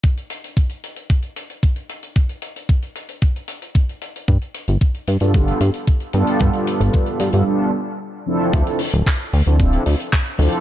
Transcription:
<<
  \new Staff \with { instrumentName = "Analog polysynth" } { \time 4/4 \key d \dorian \tempo 4 = 113 r1 | r1 | r4. r16 <g b d' f' a'>16 <g b d' f' a'>8 r4 <g b d' f' a'>8~ | <g b d' f' a'>4.~ <g b d' f' a'>16 <g b d' f' a'>16 <g b d' f' a'>8 r4 <f c' d' e' a'>8~ |
<f c' d' e' a'>8 r4 r16 <f c' d' e' a'>16 <f c' d' e' a'>8 r4 <f c' d' e' a'>8 | }
  \new Staff \with { instrumentName = "Analog synth bass" } { \clef bass \time 4/4 \key d \dorian r1 | r1 | g,16 r8 g,,16 r8 g,16 g,16 g,,16 r16 g,16 r8. g,16 r16 | g,16 r8 g,,16 r8 g,16 g,16 r2 |
d,16 r8 d,,16 r8 d,16 d,16 d,,16 r16 d,16 r8. d,16 r16 | }
  \new DrumStaff \with { instrumentName = "Drums" } \drummode { \time 4/4 <hh bd>16 hh16 hh16 hh16 <hh bd>16 hh16 hh16 hh16 <hh bd>16 hh16 hh16 hh16 <hh bd>16 hh16 hh16 hh16 | <hh bd>16 hh16 hh16 hh16 <hh bd>16 hh16 hh16 hh16 <hh bd>16 hh16 hh16 hh16 <hh bd>16 hh16 hh16 hh16 | <hh bd>16 hh16 hh16 hh16 <hh bd>16 hh16 hh16 hh16 <hh bd>16 hh16 hh16 hh16 <hh bd>16 hh16 hh16 hh16 | <hh bd>16 hh16 hh16 hh16 <hh bd>16 hh16 hh16 hh16 r4 r4 |
<hh bd>16 hh16 hho16 hh16 <hc hh bd>16 hh16 hho16 hh16 <hh bd>16 hh16 hho16 hh16 <hc hh bd>16 hh16 hho16 hh16 | }
>>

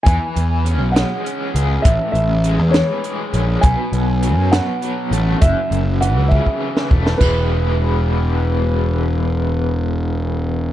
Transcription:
<<
  \new Staff \with { instrumentName = "Upright piano" } { \time 6/8 \key e \major \tempo 4. = 67 gis''4 r8 fis''4. | e''8 e''4 cis''4 r8 | gis''4. fis''4. | e''4 fis''8 e''4 r8 |
b'2.~ | b'2. | }
  \new Staff \with { instrumentName = "Overdriven electric guitar" } { \clef bass \time 6/8 \key e \major e4 cis'8 gis8 cis'8 gis'8 | a,4 gis8 e8 gis8 cis'8 | b,4 fis8 b,8 fis8 a8 | fis,4 e8 cis8 e8 a8 |
<e gis b e'>2.~ | <e gis b e'>2. | }
  \new Staff \with { instrumentName = "Picked electric bass" } { \clef bass \time 6/8 \key e \major e,16 r16 e,8. b,,8 r8. cis,8 | a,,16 r16 a,,8. e,8 r8. ais,,8 | b,,16 r16 b,,8. fis,8 r8. a,,8 | fis,,16 r16 fis,,8. cis,8 r8. e,,8 |
e,,2.~ | e,,2. | }
  \new DrumStaff \with { instrumentName = "Drums" } \drummode { \time 6/8 <hh bd>8 hh8 hh8 <hh sn>8 hh8 hh8 | <hh bd>8 hh8 hh8 <hh sn>8 hh8 hh8 | <hh bd>8 hh8 hh8 <hh sn>8 hh8 hh8 | <hh bd>8 hh8 hh8 bd16 bd8 sn16 bd16 sn16 |
<cymc bd>4. r4. | r4. r4. | }
>>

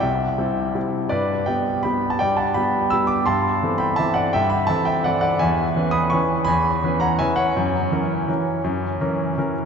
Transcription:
\new Staff \with { instrumentName = "Grand piano" } { \time 3/4 \key a \dorian \tempo 4 = 167 << { <e'' g''>2 r4 | <b' d''>4 <d'' g''>4 <g'' b''>8. a''16 | <d'' g''>8 <fis'' a''>8 <g'' b''>4 <b'' e'''>8 <b'' d'''>8 | <a'' c'''>4. <g'' b''>8 <e'' a''>8 <d'' fis''>8 |
<e'' g''>8 <g'' b''>8 <e'' a''>8 <e'' g''>8 <d'' fis''>8 <d'' fis''>8 | \key cis \dorian <e'' gis''>4. <b'' dis'''>8 <gis'' cis'''>4 | <gis'' b''>4. <fis'' ais''>8 <e'' gis''>8 <cis'' fis''>8~ | <cis'' fis''>2.~ |
<cis'' fis''>2~ <cis'' fis''>8 r8 | } \\ { c,4 <g c' e'>4 <g c' e'>4 | g,4 <g b g'>4 <g b g'>4 | g,4 <g b g'>4 <g b g'>4 | g,4 <e c' a'>4 <e c' a'>4 |
g,4 <e c' a'>4 <e c' a'>4 | e,4 <e cis' b'>4 <e cis' b'>4 | e,4 <e cis' b'>4 <e cis' b'>4 | fis,4 <e cis' ais'>4 <e cis' ais'>4 |
fis,4 <e cis' ais'>4 <e cis' ais'>4 | } >> }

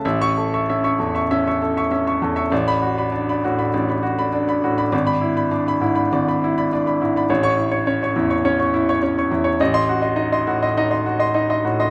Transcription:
<<
  \new Staff \with { instrumentName = "Grand piano" } { \time 4/4 \key b \dorian \tempo 4 = 101 e''16 <e'' cis'''>16 a'16 <e'' cis'''>16 e''16 <e'' cis'''>16 a'16 <e'' cis'''>16 e''16 <e'' cis'''>16 a'16 <e'' cis'''>16 e''16 <e'' cis'''>16 a'16 <e'' cis'''>16 | d''16 <d'' b''>16 fis'16 <d'' b''>16 d''16 <d'' b''>16 fis'16 <d'' b''>16 d''16 <d'' b''>16 fis'16 <d'' b''>16 d''16 <d'' b''>16 fis'16 <d'' b''>16 | d''16 <d'' b''>16 e'16 <d'' b''>16 d''16 <d'' b''>16 e'16 <d'' b''>16 d''16 <d'' b''>16 e'16 <d'' b''>16 d''16 <d'' b''>16 e'16 <d'' b''>16 | cis''16 <cis'' cis'''>16 e'16 <cis'' cis'''>16 cis''16 <cis'' cis'''>16 e'16 <cis'' cis'''>16 cis''16 <cis'' cis'''>16 e'16 <cis'' cis'''>16 cis''16 <cis'' cis'''>16 e'16 <cis'' cis'''>16 |
ees''16 <ees'' c'''>16 fis'16 <ees'' c'''>16 ees''16 <ees'' c'''>16 fis'16 <ees'' c'''>16 ees''16 <ees'' c'''>16 fis'16 <ees'' c'''>16 ees''16 <ees'' c'''>16 fis'16 <ees'' c'''>16 | }
  \new Staff \with { instrumentName = "Grand piano" } { \clef bass \time 4/4 \key b \dorian a,,4 cis'8 e,8 cis'4 cis'8 e,8 | a,,4 d'8 a,8 a,,4 d'8 a,8 | gis,,4 d'8 gis,8 gis,,4 d'8 gis,8 | a,,4 cis'8 e,8 cis'4 cis'8 e,8 |
a,,4 ees'8 a,8 ees'4 ees'8 a,8 | }
>>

